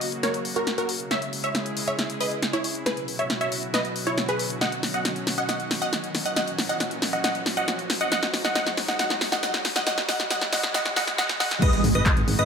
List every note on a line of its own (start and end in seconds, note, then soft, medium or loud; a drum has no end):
0.00 2.83 C#3 medium
0.00 1.09 F#3 medium
0.00 1.09 A#3 medium
0.00 0.10 F#4 medium
0.00 1.09 F#4 medium
0.00 0.10 D#5 medium
0.00 open hi-hat loud
0.00 riser medium
0.12 closed hi-hat soft
0.23 0.43 A#4 medium
0.23 0.43 C#5 medium
0.23 snare medium
0.23 closed hi-hat medium
0.34 closed hi-hat soft
0.45 open hi-hat loud
0.56 0.69 F#4 medium
0.56 0.69 A#4 medium
0.56 closed hi-hat soft
0.67 snare medium
0.67 closed hi-hat medium
0.78 0.98 F#4 medium
0.78 0.98 A#4 medium
0.78 closed hi-hat soft
0.89 open hi-hat loud
1.00 closed hi-hat medium
1.11 2.84 G#3 medium
1.11 4.58 E4 medium
1.11 2.84 G#4 medium
1.11 1.31 C#5 medium
1.11 1.31 E5 loud
1.11 snare medium
1.11 closed hi-hat medium
1.22 closed hi-hat soft
1.33 open hi-hat loud
1.44 1.70 C#5 medium
1.44 1.70 E5 medium
1.44 closed hi-hat soft
1.55 snare medium
1.55 closed hi-hat medium
1.66 closed hi-hat soft
1.77 open hi-hat loud
1.88 2.07 C#5 medium
1.88 2.07 E5 medium
1.88 closed hi-hat soft
1.99 snare medium
1.99 closed hi-hat medium
2.10 closed hi-hat soft
2.20 2.40 B4 medium
2.20 2.40 D#5 loud
2.20 open hi-hat loud
2.31 closed hi-hat soft
2.42 snare medium
2.42 closed hi-hat medium
2.53 2.73 E4 medium
2.53 2.73 C#5 medium
2.53 closed hi-hat soft
2.64 open hi-hat loud
2.75 closed hi-hat medium
2.86 6.33 B2 medium
2.86 8.08 F#3 medium
2.86 6.33 F#4 medium
2.86 3.06 G#4 medium
2.86 3.06 B4 medium
2.86 snare medium
2.86 closed hi-hat medium
2.97 closed hi-hat soft
3.08 open hi-hat loud
3.19 3.32 C#5 medium
3.19 3.32 E5 medium
3.19 closed hi-hat soft
3.30 snare medium
3.30 closed hi-hat medium
3.41 3.61 C#5 medium
3.41 3.61 E5 medium
3.41 closed hi-hat soft
3.52 open hi-hat loud
3.63 closed hi-hat soft
3.74 3.94 B4 medium
3.74 3.94 D#5 loud
3.74 snare medium
3.74 closed hi-hat medium
3.85 closed hi-hat soft
3.96 open hi-hat loud
4.07 4.20 E4 medium
4.07 4.20 C#5 medium
4.07 closed hi-hat soft
4.18 snare medium
4.18 closed hi-hat medium
4.29 4.48 G#4 medium
4.29 4.48 B4 medium
4.29 closed hi-hat soft
4.39 open hi-hat loud
4.50 closed hi-hat medium
4.61 6.35 C#4 medium
4.61 4.81 D#5 medium
4.61 4.81 F#5 medium
4.61 snare medium
4.61 closed hi-hat medium
4.72 closed hi-hat soft
4.83 snare medium
4.83 open hi-hat loud
4.94 5.21 D#5 medium
4.94 5.21 F#5 medium
4.94 closed hi-hat soft
5.05 snare medium
5.05 closed hi-hat medium
5.16 closed hi-hat soft
5.27 snare medium
5.27 open hi-hat loud
5.38 5.47 D#5 medium
5.38 5.47 F#5 medium
5.38 closed hi-hat soft
5.49 5.69 D#5 medium
5.49 5.69 F#5 medium
5.49 snare medium
5.49 closed hi-hat medium
5.60 closed hi-hat soft
5.71 snare medium
5.71 open hi-hat loud
5.82 6.08 D#5 medium
5.82 6.08 F#5 loud
5.82 closed hi-hat soft
5.93 snare medium
5.93 closed hi-hat medium
6.04 closed hi-hat soft
6.15 snare medium
6.15 open hi-hat loud
6.26 6.35 D#5 medium
6.26 6.35 F#5 medium
6.26 closed hi-hat medium
6.36 8.10 A#2 medium
6.36 8.10 C#4 medium
6.36 11.58 F#4 medium
6.36 6.56 D#5 medium
6.36 6.56 F#5 medium
6.36 snare medium
6.36 closed hi-hat medium
6.48 closed hi-hat soft
6.58 snare medium
6.58 open hi-hat medium
6.69 6.96 D#5 medium
6.69 6.96 F#5 medium
6.69 closed hi-hat medium
6.80 snare medium
6.80 closed hi-hat medium
6.91 closed hi-hat medium
7.02 snare medium
7.02 open hi-hat loud
7.13 7.22 D#5 medium
7.13 7.22 F#5 medium
7.24 7.44 D#5 medium
7.24 7.44 F#5 medium
7.24 snare medium
7.24 closed hi-hat medium
7.35 closed hi-hat medium
7.46 snare medium
7.46 open hi-hat loud
7.57 7.83 D#5 medium
7.57 7.83 F#5 loud
7.57 closed hi-hat soft
7.68 snare medium
7.68 closed hi-hat medium
7.79 closed hi-hat medium
7.90 snare medium
7.90 open hi-hat loud
8.01 8.10 D#5 medium
8.01 8.10 F#5 medium
8.01 closed hi-hat medium
8.12 11.59 B2 medium
8.12 9.85 G#3 medium
8.12 9.85 D#4 medium
8.12 8.32 D#5 medium
8.12 8.32 F#5 medium
8.12 snare medium
8.12 closed hi-hat medium
8.23 snare medium
8.23 closed hi-hat medium
8.34 snare medium
8.34 open hi-hat loud
8.45 8.54 D#5 medium
8.45 8.54 F#5 medium
8.45 snare medium
8.45 closed hi-hat medium
8.55 8.75 D#5 medium
8.55 8.75 F#5 medium
8.55 snare medium
8.55 closed hi-hat medium
8.66 snare medium
8.66 closed hi-hat medium
8.77 snare medium
8.77 open hi-hat loud
8.88 8.98 D#5 medium
8.88 8.98 F#5 loud
8.88 snare medium
8.88 closed hi-hat medium
8.99 9.19 D#5 medium
8.99 9.19 F#5 loud
8.99 snare loud
8.99 closed hi-hat medium
9.10 snare medium
9.10 closed hi-hat medium
9.21 snare loud
9.21 open hi-hat medium
9.32 9.41 D#5 medium
9.32 9.41 F#5 loud
9.32 snare medium
9.32 closed hi-hat medium
9.43 9.63 D#5 medium
9.43 9.63 F#5 loud
9.43 snare medium
9.43 closed hi-hat medium
9.54 snare medium
9.54 closed hi-hat medium
9.65 snare loud
9.65 open hi-hat loud
9.76 9.85 D#5 medium
9.76 9.85 F#5 medium
9.76 snare medium
9.76 closed hi-hat medium
9.87 11.60 F#3 medium
9.87 11.60 E4 medium
9.87 10.07 D#5 medium
9.87 10.07 F#5 loud
9.87 snare loud
9.87 closed hi-hat medium
9.98 snare medium
9.98 closed hi-hat medium
10.09 10.29 D#5 medium
10.09 10.29 F#5 loud
10.09 snare loud
10.09 open hi-hat loud
10.20 snare medium
10.20 closed hi-hat medium
10.30 10.51 D#5 medium
10.30 10.51 F#5 loud
10.30 snare loud
10.30 closed hi-hat medium
10.41 snare medium
10.41 closed hi-hat medium
10.53 10.73 D#5 medium
10.53 10.73 F#5 loud
10.53 snare loud
10.53 open hi-hat loud
10.63 snare loud
10.63 closed hi-hat medium
10.74 10.94 D#5 medium
10.74 10.94 F#5 loud
10.74 snare loud
10.74 closed hi-hat medium
10.85 snare medium
10.85 closed hi-hat medium
10.96 11.16 D#5 medium
10.96 11.16 F#5 loud
10.96 snare loud
10.96 open hi-hat loud
11.07 snare medium
11.07 closed hi-hat medium
11.18 11.38 D#5 medium
11.18 11.38 F#5 loud
11.18 snare loud
11.18 closed hi-hat medium
11.29 snare loud
11.29 closed hi-hat medium
11.40 11.60 D#5 medium
11.40 11.60 F#5 loud
11.40 snare loud
11.40 open hi-hat loud
11.51 snare medium
11.51 closed hi-hat medium
11.62 12.45 D#3 medium
11.62 12.45 G#3 medium
11.62 12.45 B3 medium
11.62 12.45 F#4 medium
11.62 11.82 B4 medium
11.62 11.82 D#5 loud
11.62 11.82 D#6 loud
11.62 kick loud
11.62 closed hi-hat medium
11.62 crash loud
11.62 impact medium
11.73 closed hi-hat medium
11.84 11.91 G#1 loud
11.84 open hi-hat loud
11.95 12.02 G#1 medium
11.95 12.21 B4 medium
11.95 12.21 D#5 medium
11.95 12.21 D#6 medium
11.95 closed hi-hat medium
12.06 kick loud
12.06 clap loud
12.06 closed hi-hat medium
12.17 12.24 G#1 medium
12.17 closed hi-hat medium
12.28 12.35 G#1 medium
12.28 open hi-hat loud
12.39 12.45 G#1 medium
12.39 12.45 B4 medium
12.39 12.45 D#5 loud
12.39 12.45 D#6 loud
12.39 closed hi-hat medium